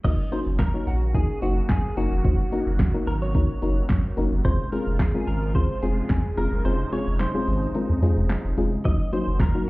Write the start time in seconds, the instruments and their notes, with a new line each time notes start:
0.04 analog synth bass F#1, supersaw synth D#3 F#3 A#3 C#4, synth pluck A#3 C#4 D#4 F#4 A#4, clean electric guitar D#5, kick, closed hi-hat, crash, shaker
0.19 shaker
0.32 synth pluck A#3 C#4 D#4 F#4 A#4, clean electric guitar C5, open hi-hat, shaker
0.46 analog synth bass F#1, shaker
0.59 clean electric guitar A#4, kick, snare, clap, closed hi-hat, shaker
0.74 synth pluck A#3 C#4 D#4 F#4 C#5, shaker
0.87 analog synth bass A#1, clean electric guitar F#4, open hi-hat, shaker
1.02 shaker
1.14 synth pluck A#3 C#4 D#4 F#4 A#4, clean electric guitar G#4, kick, closed hi-hat, shaker
1.29 shaker
1.42 analog synth bass F#1, synth pluck A#3 C#4 D#4 F#4 C5, clean electric guitar F#4, open hi-hat, shaker
1.57 shaker
1.69 analog synth bass F#2, clean electric guitar G#4, kick, snare, clap, closed hi-hat
1.84 shaker
1.97 analog synth bass F#1, synth pluck A#3 C#4 D#4 F#4 A#4, clean electric guitar F#4, open hi-hat, shaker
2.12 analog synth bass F1, shaker
2.24 analog synth bass F#1, supersaw synth C3, synth pluck A#3 C#4 D#4 F#4 C5, kick, closed hi-hat, shaker
2.39 shaker
2.52 synth pluck A#3 C#4 D#4 F#4 A#4, open hi-hat, shaker
2.67 analog synth bass F#1, shaker
2.79 kick, snare, clap, closed hi-hat, shaker
2.94 synth pluck A#3 C#4 D#4 F#4 A#4, shaker
3.07 analog synth bass G#1, clean electric guitar A#4, open hi-hat, shaker
3.22 clean electric guitar C#5, shaker
3.34 synth pluck A#3 C#4 D#4 F#4 A#4, kick, closed hi-hat, shaker
3.49 shaker
3.62 analog synth bass F#1, synth pluck A#3 C#4 D#4 F#4 A#4, open hi-hat, shaker
3.77 shaker
3.89 analog synth bass F#2, kick, snare, clap, closed hi-hat, shaker
4.04 shaker
4.17 analog synth bass F#1, synth pluck A#3 C#4 D#4 F#4 A#4, open hi-hat, shaker
4.32 analog synth bass F#1, shaker
4.45 analog synth bass F1, supersaw synth C#3 F3 G#3 F4, synth pluck G#3 C4 C#4 F4 G#4, clean electric guitar C5, kick, closed hi-hat, shaker
4.59 shaker
4.72 synth pluck G#3 C4 C#4 F4 G#4, clean electric guitar A#4, open hi-hat, shaker
4.87 analog synth bass F1, shaker
4.99 clean electric guitar G#4, kick, snare, clap, closed hi-hat
5.14 synth pluck G#3 C4 C#4 F4 A#4, shaker
5.27 analog synth bass G#1, clean electric guitar A#4, open hi-hat, shaker
5.42 shaker
5.55 synth pluck G#3 C4 C#4 F4 G#4, clean electric guitar C5, kick, closed hi-hat, shaker
5.70 shaker
5.82 analog synth bass F1, synth pluck G#3 C4 C#4 F4 G#4, clean electric guitar G#4, open hi-hat, shaker
5.97 shaker
6.09 analog synth bass F2, kick, snare, clap, closed hi-hat, shaker
6.24 shaker
6.37 analog synth bass F1, synth pluck G#3 C4 C#4 F4 G#4, clean electric guitar A#4, open hi-hat, shaker
6.52 analog synth bass F#1, shaker
6.65 analog synth bass F1, synth pluck G#3 C4 C#4 F4 G#4, supersaw synth D#4, clean electric guitar C5, closed hi-hat, shaker
6.79 shaker
6.92 synth pluck G#3 C4 C#4 F4 G#4, clean electric guitar C#5, open hi-hat, shaker
7.07 analog synth bass F1, shaker
7.19 clean electric guitar C5, snare, clap, closed hi-hat
7.34 synth pluck G#3 C4 C#4 F4 G#4, shaker
7.48 analog synth bass G#1, open hi-hat, shaker
7.62 shaker
7.75 synth pluck G#3 C4 C#4 F4 A#4, closed hi-hat, shaker
7.90 analog synth bass F2, shaker
8.02 analog synth bass F2, synth pluck G#3 C4 C#4 F4 G#4, open hi-hat, shaker
8.17 analog synth bass F1, shaker
8.29 snare, clap, closed hi-hat, shaker
8.45 analog synth bass F1, shaker
8.57 analog synth bass F1, synth pluck G#3 C4 C#4 F4 G#4, open hi-hat, shaker
8.72 shaker
8.85 analog synth bass F#1, supersaw synth D#3 A#3, synth pluck F#3 A#3 C#4 D#4 F#4, clean electric guitar D#5, kick, closed hi-hat, shaker
9.00 shaker
9.13 synth pluck F#3 A#3 C#4 D#4 F#4, clean electric guitar C5, open hi-hat, shaker
9.27 analog synth bass F#1, shaker
9.40 clean electric guitar A#4, kick, snare, clap, closed hi-hat, shaker
9.55 synth pluck F#3 A#3 C#4 D#4 F#4, shaker